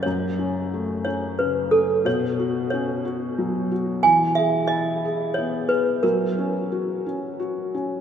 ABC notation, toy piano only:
X:1
M:3/4
L:1/8
Q:1/4=90
K:F#mix
V:1 name="Toy piano"
c3 c B =A | c2 c3 z | g e d2 c B | A4 z2 |]